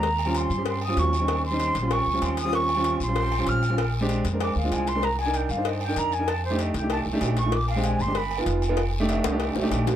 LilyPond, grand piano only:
\new Staff \with { instrumentName = "Grand piano" } { \time 4/4 \key ees \major \tempo 4 = 192 r8. <g c' des' f'>8. r16 <g c' des' g'>8. r16 <g c' des' f'>8. r16 <g c' des' ees'>16~ | <g c' des' ees'>8 r16 <g c' des' ees'>8. r16 <g c' des' f'>8. r16 <g c' des' f'>8. r16 <g c' des' f'>16~ | <g c' des' f'>8 r16 <g c' des' f'>8. r16 <g c' des' f'>8. r16 <g c' des' f'>8. r16 <g c' des' f'>16 | r8. <aes c' d' g'>8. r16 <aes c' d' bes'>8. r16 <aes c' d' f'>8. r16 <aes c' d' bes'>16 |
r8. <d' ees' bes'>8. r16 <d' ees' c''>8. r16 <d' ees' bes'>8. r16 <d' ees' bes'>16 | r8. <a d' ees' g'>8. r16 <a d' ees' g'>8. r16 <a d' ees' g'>8. r16 <a d' ees' f'>16 | r8. <aes c' d' g'>8. r16 <aes c' d' g'>16 r8. <b dis' f'>8. r16 <b dis' f'>16 | r8. <a d' ees' g'>8. r16 <a d' ees' g'>8. r16 <a d' ees' g'>8. r8 | }